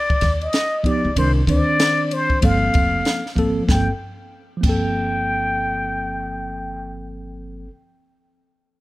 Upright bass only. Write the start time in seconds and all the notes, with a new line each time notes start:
0.10 muted upright bass stroke
0.22 D#2
1.05 C#2
1.17 C2
1.48 D2
2.43 G1
2.75 F1
3.37 G#1
3.69 G1
4.64 G1